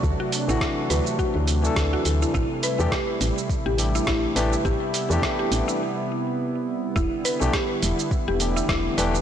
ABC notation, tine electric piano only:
X:1
M:4/4
L:1/16
Q:"Swing 16ths" 1/4=104
K:Em
V:1 name="Tine electric piano"
z3 [E,A,DF]8 [E,A,DA]4- [E,A,DA] | z3 [E,A,DG] z6 [E,A,DG]4 [E,A,DG] z | z3 [E,A,DG]4- [E,A,DG] z8 | z3 [E,A,DG] z6 [E,A,DG]4 [E,A,DG] z |]